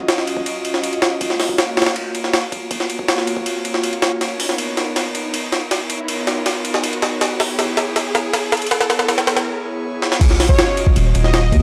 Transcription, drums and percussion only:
0.08 snare loud
0.08 ride medium
0.18 snare soft
0.27 ride medium
0.37 kick medium
0.46 ride medium
0.65 ride medium
0.74 snare soft
0.84 ride medium
0.93 ride soft
1.02 snare loud
1.02 ride medium
1.21 kick loud
1.21 ride medium
1.30 snare soft
1.40 snare medium
1.40 open hi-hat medium
1.49 kick medium
1.58 snare loud
1.58 ride medium
1.77 snare medium
1.77 ride medium
1.82 snare medium
1.82 ride medium
1.86 snare loud
1.86 ride medium
1.96 ride medium
2.15 ride medium
2.24 snare soft
2.33 snare loud
2.33 ride medium
2.52 kick medium
2.52 ride medium
2.71 kick loud
2.71 ride medium
2.80 snare soft
2.90 ride medium
2.99 kick medium
3.08 snare loud
3.08 ride medium
3.18 snare soft
3.27 ride medium
3.37 kick medium
3.46 ride medium
3.65 ride medium
3.74 snare soft
3.83 ride medium
3.93 ride soft
4.02 snare loud
4.02 ride medium
4.21 snare soft
4.21 ride medium
4.40 open hi-hat medium
4.49 snare soft
4.58 ride medium
4.77 snare medium
4.77 ride medium
4.96 snare medium
4.96 ride medium
5.15 ride medium
5.34 ride medium
5.52 snare medium
5.52 ride medium
5.71 snare medium
5.71 ride medium
5.90 ride medium
6.08 ride medium
6.27 snare medium
6.27 ride medium
6.46 snare medium
6.46 ride medium
6.65 ride medium
6.74 snare medium
6.84 ride medium
6.93 ride soft
7.02 snare medium
7.02 ride medium
7.21 snare medium
7.21 ride medium
7.40 snare medium
7.40 open hi-hat medium
7.59 snare medium
7.59 ride medium
7.77 snare medium
7.77 ride medium
7.96 snare medium
7.96 ride medium
8.15 snare medium
8.15 ride medium
8.33 snare medium
8.33 ride medium
8.52 snare medium
8.52 ride medium
8.57 ride medium
8.62 ride medium
8.67 ride medium
8.71 snare medium
8.71 ride medium
8.81 snare medium
8.90 snare medium
8.90 ride medium
8.99 snare medium
9.08 snare medium
9.08 ride medium
9.18 snare medium
9.27 snare loud
9.27 ride medium
9.37 snare medium
10.02 snare medium
10.12 snare medium
10.21 kick loud
10.21 crash medium
10.21 ride medium
10.30 snare soft
10.40 snare medium
10.40 open hi-hat medium
10.49 kick loud
10.59 snare loud
10.59 ride medium
10.77 ride medium
10.87 kick loud
10.96 ride medium
11.15 ride medium
11.24 snare soft
11.34 snare loud
11.34 ride medium
11.52 kick loud
11.52 ride medium

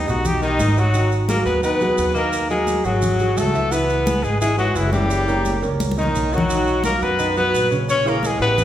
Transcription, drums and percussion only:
0.08 high conga soft
0.08 maracas soft
0.25 high conga soft
0.25 low conga medium
0.25 maracas medium
0.42 high conga soft
0.42 maracas soft
0.59 high conga medium
0.59 maracas medium
0.77 maracas soft
0.94 high conga soft
0.94 maracas medium
1.12 high conga soft
1.12 maracas soft
1.29 high conga medium
1.29 maracas medium
1.46 high conga soft
1.46 maracas soft
1.63 high conga soft
1.63 maracas medium
1.80 high conga soft
1.80 maracas soft
1.98 high conga soft
1.98 maracas medium
2.15 maracas soft
2.32 high conga soft
2.32 maracas medium
2.50 high conga soft
2.50 maracas soft
2.67 high conga medium
2.67 maracas medium
2.85 high conga soft
2.85 maracas soft
3.02 high conga soft
3.02 low conga medium
3.02 maracas medium
3.19 high conga soft
3.19 maracas soft
3.37 high conga medium
3.37 maracas medium
3.55 maracas soft
3.72 high conga soft
3.72 maracas medium
3.89 high conga soft
3.89 maracas soft
4.06 high conga medium
4.06 maracas medium
4.24 high conga soft
4.24 maracas soft
4.41 high conga soft
4.41 maracas medium
4.58 high conga soft
4.58 maracas soft
4.76 high conga soft
4.76 maracas medium
4.93 high conga medium
4.93 maracas soft
5.10 high conga soft
5.10 maracas medium
5.28 high conga soft
5.28 maracas soft
5.45 high conga medium
5.45 maracas medium
5.63 high conga soft
5.63 maracas soft
5.80 high conga medium
5.80 maracas medium
5.91 high conga medium
5.98 maracas soft
6.03 low conga medium
6.15 maracas medium
6.33 maracas soft
6.38 low conga loud
6.49 high conga soft
6.49 maracas medium
6.66 high conga soft
6.66 maracas soft
6.84 high conga medium
6.84 maracas medium
7.02 high conga soft
7.02 maracas soft
7.19 high conga soft
7.19 maracas medium
7.36 high conga soft
7.36 maracas soft
7.54 high conga soft
7.54 maracas medium
7.72 maracas soft
7.88 high conga soft
7.88 maracas medium
8.05 high conga soft
8.05 maracas soft
8.23 high conga medium
8.23 maracas medium
8.41 high conga soft
8.41 maracas soft
8.58 high conga soft
8.58 low conga medium
8.58 maracas medium

